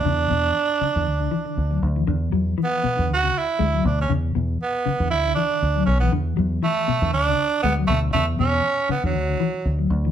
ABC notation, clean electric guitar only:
X:1
M:4/4
L:1/16
Q:"Swing 16ths" 1/4=119
K:Dlyd
V:1 name="Clean electric guitar" clef=bass
C,2 B,,2 z2 C, D,2 D, E, D,2 F,2 E, | D,2 F,2 E,2 B,, D,2 C,2 z G, F, B,,2 | C,2 B,,2 z2 C, D,2 D, E, D,2 F,2 E, | D,2 F,2 E,2 B,, D,2 C,2 z G, F, B,,2 |
C,2 B,,2 z2 C, D,2 D, E, z2 F,2 E, |]